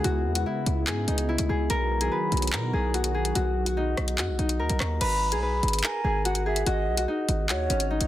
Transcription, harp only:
0.00 0.52 D#4 medium
0.00 0.87 G#4 medium
0.00 1.34 A#4 medium
0.04 0.35 F#4 loud
0.35 2.79 F#4 medium
0.46 1.14 E4 medium
0.87 1.49 G#4 medium
1.08 1.35 D#4 medium
1.29 3.83 E4 medium
1.49 2.01 G#4 medium
1.70 2.18 A#4 loud
2.01 2.73 G#4 medium
2.12 2.59 B4 medium
2.53 4.59 A#4 medium
2.73 3.14 G#4 medium
2.94 3.35 F#4 medium
3.14 5.32 G#4 medium
3.35 3.66 F#4 medium
3.67 4.18 F#4 medium
3.77 4.38 D#4 medium
4.18 6.25 F#4 medium
4.39 7.08 D#4 medium
4.59 5.07 A#4 medium
5.01 5.42 B4 loud
5.32 6.04 G#4 medium
5.42 5.90 B4 medium
5.84 7.96 A#4 medium
6.04 6.46 G#4 medium
6.25 6.66 F#4 medium
6.46 8.07 G#4 medium
6.67 6.97 F#4 loud
6.98 7.49 F#4 medium
7.08 7.90 D#4 medium
7.49 8.07 F#4 loud
7.70 8.07 C#4 medium
7.90 8.07 D#4 medium

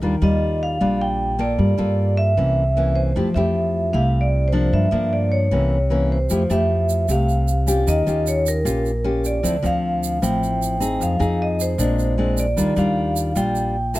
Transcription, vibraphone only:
0.23 0.59 D#5 medium
0.63 1.02 F5 loud
1.01 1.41 G5 medium
1.41 2.15 D5 medium
2.17 2.99 E5 loud
2.95 3.36 C5 medium
3.34 3.96 E5 medium
3.93 4.21 F5 medium
4.21 4.48 D5 medium
4.48 4.74 C5 medium
4.74 5.14 E5 medium
5.13 5.33 D5 medium
5.32 6.06 C#5 medium
6.12 6.52 C5 medium
6.52 7.05 E5 medium
7.11 7.91 F5 medium
7.89 8.28 D#5 medium
8.28 8.47 C#5 medium
8.48 9.21 A#4 medium
9.26 9.66 D5 medium
9.66 10.25 F5 medium
10.23 11.04 G5 loud
11.03 11.42 F5 medium
11.42 11.59 D#5 medium
11.62 12.41 C5 medium
12.40 12.79 D5 medium
12.79 13.39 F5 medium
13.37 13.91 G5 medium
13.96 14.00 E5 medium

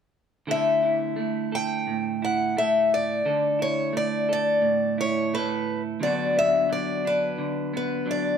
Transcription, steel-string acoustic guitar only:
0.51 1.55 E5 medium
1.55 2.24 G5 medium
2.25 2.58 F#5 medium
2.58 2.93 E5 medium
2.94 3.62 D5 medium
3.62 3.96 C#5 medium
3.97 4.28 D5 medium
4.33 5.00 D5 medium
5.01 5.34 C#5 medium
5.35 5.81 B4 medium
6.03 6.37 D5 medium
6.39 6.72 E5 medium
6.72 7.06 D5 medium
7.07 7.76 B4 medium
7.77 8.07 B4 medium
8.11 8.38 D5 medium

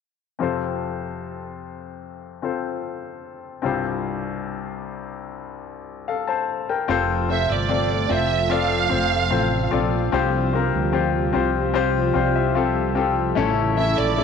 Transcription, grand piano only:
0.39 3.60 F2 soft
0.39 3.61 C3 soft
0.39 2.38 C4 soft
0.39 2.39 F4 soft
0.39 2.39 A4 soft
0.39 2.40 C5 soft
2.42 3.60 C4 soft
2.42 3.62 F4 soft
2.42 3.65 A4 soft
2.42 3.64 C5 soft
3.62 6.84 C2 soft
3.62 6.85 G2 soft
3.62 6.83 C4 soft
3.62 6.84 F4 soft
3.62 6.85 G4 soft
3.62 6.04 C5 soft
6.08 6.27 A4 soft
6.08 6.27 F5 soft
6.28 6.67 C5 soft
6.28 6.66 A5 soft
6.69 7.08 A#4 soft
6.69 7.07 G5 soft
6.88 8.06 C3 medium
6.88 7.27 C4 medium
6.88 7.27 F4 medium
6.88 7.28 A4 medium
6.88 7.28 C5 medium
7.29 7.67 C4 soft
7.29 7.68 F4 soft
7.29 7.68 A4 soft
7.29 7.68 C5 medium
7.69 8.07 C4 medium
7.69 8.08 F4 soft
7.69 8.08 A4 soft
7.69 8.08 D5 medium
8.09 8.48 C4 medium
8.09 8.48 F4 soft
8.09 8.49 A4 medium
8.09 8.49 C5 medium
8.49 8.88 C4 medium
8.49 8.88 F4 medium
8.49 8.89 A4 medium
8.49 8.90 D5 medium
8.89 9.29 C4 medium
8.89 9.29 F4 soft
8.89 9.29 A4 soft
8.89 9.30 C5 medium
9.30 9.69 C4 medium
9.30 9.70 F4 medium
9.30 9.70 A4 soft
9.30 9.70 C5 medium
9.71 10.10 C4 medium
9.71 10.10 F4 medium
9.71 10.11 A4 medium
9.71 10.11 D5 medium
10.12 11.31 G2 medium
10.12 10.51 C4 medium
10.12 10.51 F4 medium
10.12 10.52 G4 medium
10.12 10.52 C5 medium
10.53 10.91 C4 medium
10.53 10.92 F4 medium
10.53 10.92 G4 medium
10.53 10.93 A#4 medium
10.92 11.31 C4 medium
10.92 11.32 F4 medium
10.92 11.32 G4 medium
10.92 11.33 C5 medium
11.33 11.72 C4 medium
11.33 11.73 F4 medium
11.33 11.73 G4 medium
11.33 11.73 C5 medium
11.74 12.12 C4 medium
11.74 12.12 F4 medium
11.74 12.13 G4 medium
11.74 12.14 C5 medium
12.13 12.53 C4 medium
12.13 12.53 F4 medium
12.13 12.54 G4 medium
12.13 12.54 C5 medium
12.13 12.34 D5 medium
12.36 12.55 E5 medium
12.55 12.93 C4 medium
12.55 12.94 F4 medium
12.55 12.95 G4 medium
12.55 12.95 A4 medium
12.55 12.94 F5 medium
12.95 13.34 C4 medium
12.95 13.35 F4 medium
12.95 13.35 G4 medium
12.95 13.35 A4 medium
12.95 13.34 G5 medium
13.35 13.75 A3 medium
13.35 13.75 C#4 medium
13.35 13.76 E4 medium
13.35 13.76 A4 loud
13.76 14.15 A3 medium
13.76 14.16 C#4 soft
13.76 14.16 E4 soft
13.76 14.17 A4 medium
14.16 14.24 C#3 medium
14.16 14.24 A3 medium
14.16 14.24 E4 soft
14.16 14.24 A4 medium

